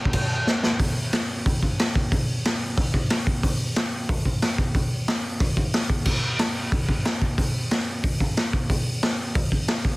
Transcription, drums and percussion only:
0.05 kick medium
0.13 kick loud
0.13 crash medium
0.47 snare medium
0.63 snare medium
0.79 kick loud
0.79 open hi-hat medium
1.13 snare loud
1.13 open hi-hat medium
1.46 kick loud
1.46 open hi-hat medium
1.63 kick medium
1.79 snare loud
1.79 open hi-hat medium
1.95 kick medium
2.12 kick loud
2.12 open hi-hat medium
2.45 snare loud
2.45 open hi-hat medium
2.77 kick loud
2.77 open hi-hat medium
2.94 kick medium
3.10 snare loud
3.10 open hi-hat medium
3.27 kick medium
3.43 kick loud
3.43 open hi-hat medium
3.76 snare loud
3.76 open hi-hat medium
4.09 kick loud
4.09 open hi-hat medium
4.25 kick medium
4.42 snare loud
4.42 open hi-hat medium
4.58 kick medium
4.74 kick loud
4.74 open hi-hat medium
5.08 snare loud
5.08 open hi-hat medium
5.40 kick loud
5.40 open hi-hat medium
5.57 kick medium
5.74 snare loud
5.74 open hi-hat medium
5.90 kick loud
6.05 kick medium
6.05 crash medium
6.39 snare loud
6.39 open hi-hat medium
6.72 kick loud
6.72 open hi-hat medium
6.89 kick medium
7.05 snare loud
7.05 open hi-hat medium
7.22 kick medium
7.38 kick loud
7.38 open hi-hat medium
7.71 snare loud
7.71 open hi-hat medium
8.04 kick loud
8.04 open hi-hat medium
8.20 kick medium
8.37 snare loud
8.37 open hi-hat medium
8.53 kick medium
8.70 kick loud
8.70 open hi-hat medium
9.03 snare loud
9.03 open hi-hat medium
9.35 kick loud
9.35 open hi-hat medium
9.52 kick medium
9.68 snare loud
9.68 open hi-hat medium
9.85 kick medium

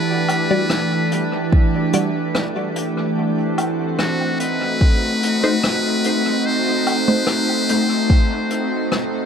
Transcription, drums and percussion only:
0.28 closed hi-hat medium
0.28 low woodblock medium
0.70 cross-stick medium
1.12 closed hi-hat medium
1.52 kick loud
1.93 closed hi-hat medium
2.35 cross-stick medium
2.76 closed hi-hat medium
3.58 closed hi-hat medium
3.58 low woodblock medium
3.99 cross-stick medium
4.40 closed hi-hat medium
4.81 kick loud
5.23 closed hi-hat medium
5.64 cross-stick medium
6.04 closed hi-hat medium
6.87 closed hi-hat medium
6.87 low woodblock medium
7.27 cross-stick medium
7.69 closed hi-hat medium
8.10 kick loud
8.50 closed hi-hat medium
8.92 cross-stick medium

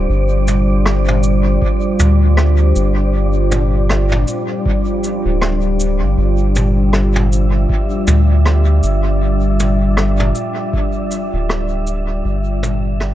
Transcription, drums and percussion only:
0.47 mid tom medium
0.47 cabasa medium
0.86 cross-stick medium
1.08 mid tom medium
1.23 cabasa medium
1.62 kick loud
1.99 mid tom medium
1.99 cabasa medium
2.37 cross-stick medium
2.76 cabasa medium
3.51 mid tom medium
3.51 cabasa medium
3.89 cross-stick medium
4.12 mid tom medium
4.28 cabasa medium
4.66 kick loud
5.04 cabasa medium
5.42 cross-stick medium
5.80 cabasa medium
6.55 mid tom medium
6.55 cabasa medium
6.93 cross-stick medium
7.16 mid tom medium
7.32 cabasa medium
7.70 kick loud
8.07 mid tom medium
8.07 cabasa medium
8.46 cross-stick medium
8.83 cabasa medium
9.60 mid tom medium
9.60 cabasa medium
9.97 cross-stick medium
10.20 mid tom medium
10.35 cabasa medium
10.73 kick loud
11.11 cabasa medium
11.50 cross-stick medium
11.87 cabasa medium
12.63 mid tom medium
12.63 cabasa medium
13.00 cross-stick medium

